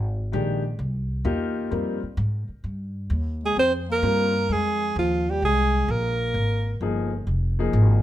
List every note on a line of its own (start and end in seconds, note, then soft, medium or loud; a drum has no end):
0.00 0.31 G#1 medium
0.32 0.78 A#1 medium
0.32 0.61 D#3 medium
0.32 0.61 G#3 medium
0.32 0.61 D4 medium
0.32 0.61 G4 medium
0.79 1.23 C2 medium
1.25 1.70 E2 medium
1.25 1.96 A#3 medium
1.25 1.96 D#4 medium
1.25 1.70 F4 medium
1.25 1.97 G4 medium
1.71 2.01 F2 medium
1.71 1.99 G3 medium
1.71 1.99 C4 soft
1.71 2.00 F4 soft
1.71 2.00 A#4 medium
2.03 muted upright bass stroke soft
2.17 2.47 G#2 medium
2.49 muted upright bass stroke soft
2.64 3.09 G2 medium
3.10 3.55 D#2 medium
3.43 3.56 G#3 medium
3.43 3.57 G#4 medium
3.56 4.01 F2 medium
3.56 3.71 C4 medium
3.56 3.73 C5 loud
3.89 4.51 A#3 medium
3.89 4.54 A#4 loud
4.02 4.47 G2 medium
4.02 4.31 G3 medium
4.02 4.31 C4 medium
4.02 4.32 F4 medium
4.02 4.32 A#4 medium
4.49 4.94 F2 medium
4.49 4.96 G#3 medium
4.49 4.97 G#4 medium
4.96 5.41 D#2 medium
4.96 5.31 F3 medium
4.96 5.32 F4 medium
5.29 5.42 G3 medium
5.29 5.43 G4 medium
5.42 5.87 C2 medium
5.42 5.91 G#3 medium
5.42 5.92 G#4 loud
5.88 6.33 A#1 medium
5.88 6.81 A#3 medium
5.88 6.82 A#4 medium
6.34 6.79 G#1 medium
6.81 7.26 G1 medium
6.81 7.10 F3 medium
6.81 7.10 A#3 medium
6.81 7.10 D#4 medium
6.81 7.10 G#4 medium
7.27 7.72 F1 medium
7.59 8.02 F3 medium
7.59 8.02 A#3 medium
7.59 8.02 D#4 medium
7.59 8.02 G#4 medium
7.73 8.02 G#1 medium